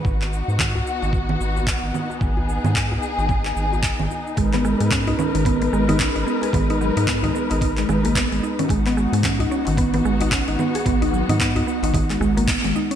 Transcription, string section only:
0, 0, Header, 1, 2, 480
1, 0, Start_track
1, 0, Key_signature, 5, "minor"
1, 0, Tempo, 540541
1, 44, Time_signature, 4, 2, 24, 8
1, 11503, End_track
2, 0, Start_track
2, 0, Title_t, "String section"
2, 0, Program_c, 0, 48
2, 44, Note_on_c, 0, 66, 81
2, 46, Note_on_c, 0, 59, 72
2, 46, Note_on_c, 0, 63, 66
2, 1944, Note_off_c, 0, 66, 0
2, 1962, Note_on_c, 0, 68, 80
2, 3849, Note_off_c, 0, 59, 0
2, 3864, Note_off_c, 0, 68, 0
2, 3876, Note_on_c, 0, 56, 77
2, 3876, Note_on_c, 0, 71, 75
2, 3879, Note_on_c, 0, 70, 66
2, 7684, Note_off_c, 0, 56, 0
2, 7684, Note_off_c, 0, 71, 0
2, 7685, Note_off_c, 0, 70, 0
2, 7721, Note_on_c, 0, 59, 79
2, 7724, Note_on_c, 0, 66, 76
2, 11503, Note_off_c, 0, 59, 0
2, 11503, Note_off_c, 0, 63, 0
2, 11503, Note_off_c, 0, 66, 0
2, 11503, End_track
0, 0, End_of_file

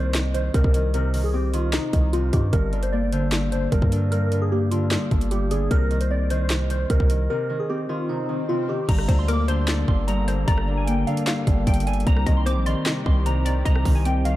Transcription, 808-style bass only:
0, 0, Header, 1, 2, 480
1, 0, Start_track
1, 0, Key_signature, -3, "minor"
1, 0, Tempo, 397351
1, 1137, Time_signature, 4, 2, 24, 8
1, 17351, End_track
2, 0, Start_track
2, 0, Title_t, "808-style bass"
2, 0, Program_c, 0, 38
2, 0, Note_on_c, 0, 36, 111
2, 609, Note_off_c, 0, 36, 0
2, 656, Note_on_c, 0, 36, 109
2, 769, Note_off_c, 0, 36, 0
2, 776, Note_on_c, 0, 36, 103
2, 2168, Note_off_c, 0, 36, 0
2, 2336, Note_on_c, 0, 36, 101
2, 2797, Note_off_c, 0, 36, 0
2, 2815, Note_on_c, 0, 43, 102
2, 3046, Note_off_c, 0, 43, 0
2, 3056, Note_on_c, 0, 31, 111
2, 4448, Note_off_c, 0, 31, 0
2, 4496, Note_on_c, 0, 31, 103
2, 4609, Note_off_c, 0, 31, 0
2, 4616, Note_on_c, 0, 43, 102
2, 6008, Note_off_c, 0, 43, 0
2, 6177, Note_on_c, 0, 31, 105
2, 6868, Note_off_c, 0, 31, 0
2, 6897, Note_on_c, 0, 36, 114
2, 8288, Note_off_c, 0, 36, 0
2, 8335, Note_on_c, 0, 36, 106
2, 8451, Note_off_c, 0, 36, 0
2, 8456, Note_on_c, 0, 36, 102
2, 8802, Note_off_c, 0, 36, 0
2, 10736, Note_on_c, 0, 31, 115
2, 10966, Note_off_c, 0, 31, 0
2, 10976, Note_on_c, 0, 38, 103
2, 11898, Note_off_c, 0, 38, 0
2, 11936, Note_on_c, 0, 31, 104
2, 12627, Note_off_c, 0, 31, 0
2, 12657, Note_on_c, 0, 31, 114
2, 13348, Note_off_c, 0, 31, 0
2, 13857, Note_on_c, 0, 31, 104
2, 14087, Note_off_c, 0, 31, 0
2, 14096, Note_on_c, 0, 31, 103
2, 14557, Note_off_c, 0, 31, 0
2, 14577, Note_on_c, 0, 36, 118
2, 14807, Note_off_c, 0, 36, 0
2, 14817, Note_on_c, 0, 36, 110
2, 15177, Note_on_c, 0, 34, 102
2, 15195, Note_off_c, 0, 36, 0
2, 15405, Note_off_c, 0, 34, 0
2, 15778, Note_on_c, 0, 36, 106
2, 16468, Note_off_c, 0, 36, 0
2, 16497, Note_on_c, 0, 36, 113
2, 16727, Note_off_c, 0, 36, 0
2, 16737, Note_on_c, 0, 36, 109
2, 17351, Note_off_c, 0, 36, 0
2, 17351, End_track
0, 0, End_of_file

